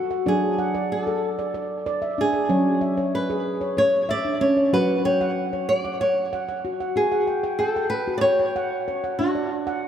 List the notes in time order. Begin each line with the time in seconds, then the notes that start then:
Already playing: F#3 F#4 A4
0.11 F#5
0.26 F#3 D4 G#4 D5
0.58 F#5
0.75 D5
0.92 A4
1.07 A4
1.39 D5
1.54 D5
1.86 D5
2.02 E5
2.18 D4 G#4
2.33 D5
2.49 F#3 C#4 C#5
2.81 E5
2.97 C#5
3.15 B4
3.30 G#4
3.61 C#5
3.77 C#5
4.09 D5 E5
4.25 D4
4.41 C#4 C#5
4.57 C#5
4.73 F#3 F#4 B4 F#5
5.05 C#5 G5
5.21 F#5
5.53 C#5
5.69 D5
5.85 F#5
6.01 C#5 F#5
6.33 F#5
6.49 F#5
6.65 F#4
6.80 F#5
6.96 F#4 G#4
7.12 F#5
7.27 G5
7.44 G5
7.59 A4 G5
7.76 G5
7.90 B4
8.08 F#4
8.18 C#5 D5
8.24 G5
8.40 G5
8.56 F#5
8.88 C#5
9.04 F#5
9.19 D4 F#4
9.35 D5
9.67 F#5